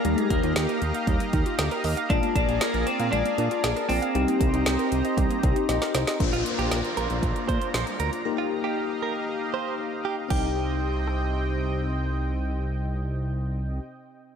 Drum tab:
CC |----------------|----------------|----------------|----------------|
HH |xxxxxxxxxxxxxxox|xxxxxxxxxxxxxxox|xxxxxxxxxxxxxxxx|xxxxxxxxxxxxxxxx|
SD |----o-------o---|----o-------o---|----o-------oooo|----o-------o---|
BD |--o-----o-o-----|o-o-------------|--o-----o-o-----|o-------o-o-----|

CC |----------------|x---------------|----------------|
HH |----------------|----------------|----------------|
SD |----------------|------r---------|----------------|
BD |----------------|o---------------|----------------|